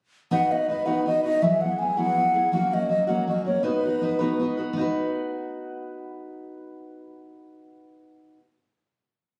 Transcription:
0.31 0.51 B3 medium
0.31 0.52 D#4 medium
0.31 0.51 F#4 medium
0.31 0.50 B4 medium
0.31 0.53 F#5 medium
0.51 0.69 D#4 soft
0.51 0.70 F#4 soft
0.51 0.69 B4 soft
0.51 0.69 D#5 medium
0.68 0.86 B3 soft
0.68 0.86 D#4 medium
0.68 0.86 F#4 medium
0.68 0.84 B4 medium
0.68 0.87 D#5 medium
0.86 1.05 B3 soft
0.86 1.06 D#4 medium
0.86 1.07 F#4 medium
0.86 1.06 B4 medium
0.86 1.06 F#5 medium
1.06 1.24 B3 soft
1.06 1.25 D#4 soft
1.06 1.24 F#4 soft
1.06 1.22 B4 soft
1.06 1.23 D#5 medium
1.23 1.42 D#4 soft
1.23 1.42 F#4 soft
1.23 1.41 B4 soft
1.23 1.44 D#5 medium
1.42 1.62 E3 medium
1.42 1.62 F#3 medium
1.42 1.62 B3 medium
1.42 1.62 E4 medium
1.42 1.61 G#4 medium
1.42 1.63 E5 medium
1.61 1.79 B3 soft
1.61 1.80 E4 soft
1.61 1.80 G#4 soft
1.61 1.80 F#5 medium
1.79 1.97 F#3 soft
1.79 1.96 B3 soft
1.79 1.96 E4 soft
1.79 1.95 G#4 medium
1.79 1.99 G#5 medium
1.97 2.18 E3 soft
1.97 2.15 F#3 medium
1.97 2.16 B3 medium
1.97 2.17 E4 medium
1.97 2.17 G#4 soft
1.97 2.53 F#5 medium
2.16 2.35 F#3 soft
2.16 2.35 B3 medium
2.16 2.35 E4 soft
2.16 2.33 G#4 medium
2.34 2.53 B3 soft
2.34 2.53 E4 soft
2.34 2.52 G#4 soft
2.52 2.73 F#3 medium
2.52 2.73 A#3 medium
2.52 2.72 C#4 medium
2.52 2.70 F#4 medium
2.52 2.75 F#5 medium
2.71 2.90 A#3 soft
2.71 2.90 C#4 soft
2.71 2.90 F#4 soft
2.71 2.89 D#5 medium
2.89 3.08 F#3 soft
2.89 3.07 A#3 soft
2.89 3.07 C#4 medium
2.89 3.06 F#4 medium
2.89 3.07 D#5 medium
3.07 3.26 F#3 soft
3.07 3.27 A#3 medium
3.07 3.28 C#4 medium
3.07 3.28 F#4 medium
3.07 3.27 F#5 medium
3.27 3.46 F#3 soft
3.27 3.46 A#3 soft
3.27 3.45 C#4 soft
3.27 3.44 F#4 medium
3.27 3.45 D#5 medium
3.45 3.63 A#3 soft
3.45 3.64 C#4 soft
3.45 3.63 F#4 soft
3.45 3.65 C#5 medium
3.63 3.84 B3 medium
3.63 3.84 D#4 medium
3.63 3.84 F#4 medium
3.63 4.40 B4 medium
3.63 3.82 B4 medium
3.83 4.01 D#4 soft
3.83 4.03 F#4 soft
3.83 4.02 B4 soft
4.01 4.19 B3 soft
4.01 4.19 D#4 soft
4.01 4.19 F#4 soft
4.01 4.18 B4 medium
4.19 4.38 B3 medium
4.19 4.39 D#4 medium
4.19 4.40 F#4 medium
4.19 4.40 B4 medium
4.39 4.57 B3 medium
4.39 4.58 D#4 medium
4.39 4.58 F#4 medium
4.39 4.56 B4 medium
4.57 4.75 D#4 soft
4.57 4.76 F#4 medium
4.57 4.75 B4 medium
4.73 8.35 B3 medium
4.73 8.38 D#4 medium
4.79 8.41 F#4 medium
4.79 8.43 B4 medium

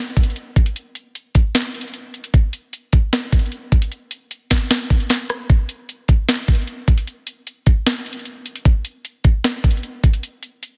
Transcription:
0.17 kick medium
0.17 closed hi-hat medium
0.23 closed hi-hat medium
0.30 closed hi-hat soft
0.36 closed hi-hat medium
0.56 kick loud
0.56 closed hi-hat medium
0.66 closed hi-hat medium
0.76 closed hi-hat medium
0.95 closed hi-hat medium
1.15 closed hi-hat loud
1.35 kick loud
1.35 closed hi-hat medium
1.55 snare loud
1.55 closed hi-hat medium
1.75 closed hi-hat medium
1.81 closed hi-hat medium
1.88 closed hi-hat soft
1.94 closed hi-hat medium
2.14 closed hi-hat medium
2.24 closed hi-hat medium
2.34 kick loud
2.34 closed hi-hat medium
2.53 closed hi-hat medium
2.73 closed hi-hat loud
2.93 kick loud
2.93 closed hi-hat medium
3.13 snare loud
3.13 closed hi-hat medium
3.32 kick medium
3.32 closed hi-hat medium
3.39 closed hi-hat medium
3.46 closed hi-hat soft
3.52 closed hi-hat medium
3.72 kick loud
3.72 closed hi-hat medium
3.82 closed hi-hat medium
3.92 closed hi-hat medium
4.11 closed hi-hat medium
4.31 closed hi-hat loud
4.50 kick loud
4.50 snare loud
4.50 closed hi-hat medium
4.71 snare loud
4.71 closed hi-hat medium
4.90 kick medium
4.90 closed hi-hat soft
5.00 closed hi-hat medium
5.10 snare medium
5.10 closed hi-hat medium
5.30 cross-stick medium
5.30 closed hi-hat medium
5.50 kick loud
5.50 closed hi-hat medium
5.69 closed hi-hat medium
5.89 closed hi-hat medium
6.08 kick medium
6.08 closed hi-hat medium
6.29 snare loud
6.29 closed hi-hat medium
6.48 kick medium
6.48 closed hi-hat medium
6.55 closed hi-hat medium
6.61 closed hi-hat soft
6.67 closed hi-hat medium
6.88 kick loud
6.88 closed hi-hat medium
6.98 closed hi-hat medium
7.07 closed hi-hat medium
7.27 closed hi-hat medium
7.47 closed hi-hat loud
7.66 kick loud
7.66 closed hi-hat medium
7.87 snare loud
7.87 closed hi-hat medium
8.06 closed hi-hat medium
8.13 closed hi-hat medium
8.19 closed hi-hat soft
8.25 closed hi-hat medium
8.46 closed hi-hat medium
8.56 closed hi-hat medium
8.65 kick loud
8.65 closed hi-hat medium
8.85 closed hi-hat medium
9.05 closed hi-hat loud
9.24 kick loud
9.24 closed hi-hat medium
9.44 snare loud
9.44 closed hi-hat medium
9.64 kick medium
9.64 closed hi-hat medium
9.71 closed hi-hat medium
9.77 closed hi-hat soft
9.83 closed hi-hat medium
10.04 kick loud
10.04 closed hi-hat medium
10.13 closed hi-hat medium
10.23 closed hi-hat medium
10.43 closed hi-hat medium
10.63 closed hi-hat loud

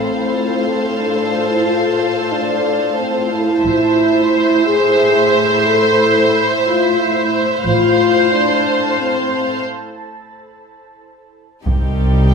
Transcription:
0.00 0.28 A1 soft
0.00 3.61 A2 soft
0.00 0.98 C4 soft
0.00 3.65 F4 soft
0.00 3.62 A4 soft
0.00 3.61 C5 soft
0.00 3.61 F5 soft
0.00 3.65 A5 soft
0.98 1.48 D4 soft
1.49 1.65 E4 soft
1.65 2.32 F4 medium
2.32 2.99 D4 medium
2.98 3.32 C4 soft
3.30 4.65 E4 medium
3.64 4.28 A1 soft
3.64 7.61 A2 soft
3.64 7.65 E4 soft
3.64 9.61 C5 soft
3.64 7.61 C5 soft
3.64 7.61 E5 soft
3.64 7.65 B5 soft
4.65 5.65 G#4 medium
5.66 6.49 A4 medium
6.66 6.99 F4 medium
7.00 7.32 E4 soft
7.65 8.28 A1 soft
7.65 9.61 A2 soft
7.65 8.28 F4 medium
7.65 9.66 A4 soft
7.65 9.62 C5 soft
7.65 9.62 F5 soft
7.65 9.66 A5 soft
8.32 8.99 D4 medium
8.99 9.66 C4 soft
11.64 12.34 C2 soft
11.64 12.34 G3 soft
11.64 12.34 C4 soft
11.64 12.34 D#4 soft
11.64 12.34 G4 soft
11.64 12.34 C5 soft
11.64 12.34 D#5 soft
11.64 taiko soft

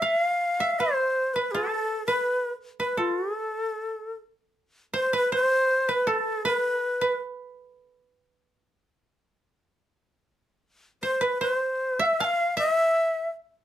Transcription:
0.00 0.80 C5 soft
0.00 0.21 E5 medium
0.00 0.66 F5 medium
0.21 0.81 F5 medium
0.60 2.10 E5 medium
0.79 0.92 B4 medium
0.79 1.35 C5 medium
0.92 1.42 C5 medium
1.34 1.53 B4 medium
1.34 2.07 B4 soft
1.51 1.62 G#4 medium
1.51 2.97 A4 medium
1.62 2.06 A4 medium
2.06 2.51 B4 medium
2.06 2.79 B4 medium
2.80 4.57 B4 soft
2.80 3.00 B4 medium
2.97 3.36 F4 medium
2.97 4.88 A4 soft
3.36 4.14 A4 medium
4.94 5.19 C5 medium
4.94 5.13 C5 medium
5.13 5.38 B4 medium
5.13 5.33 B4 medium
5.32 5.63 C5 medium
5.32 5.93 C5 medium
5.63 5.89 B4 medium
5.89 6.45 B4 medium
5.89 6.10 B4 medium
6.07 6.79 A4 medium
6.07 6.46 A4 medium
6.45 6.79 B4 medium
6.45 7.17 B4 medium
6.79 7.01 A4 medium
7.01 8.79 B4 medium
11.03 11.27 C5 soft
11.03 11.24 C5 medium
11.21 11.47 B4 medium
11.21 11.41 B4 medium
11.41 11.53 B4 medium
11.41 13.13 C5 medium
11.53 12.02 C5 medium
11.99 12.26 E5 medium
11.99 12.06 F5 medium
12.05 12.22 E5 medium
12.20 12.63 F5 medium
12.20 12.58 F5 medium
12.20 12.25 A5 medium
12.57 12.71 D#5 medium
12.57 13.65 E5 medium
12.71 13.30 E5 medium

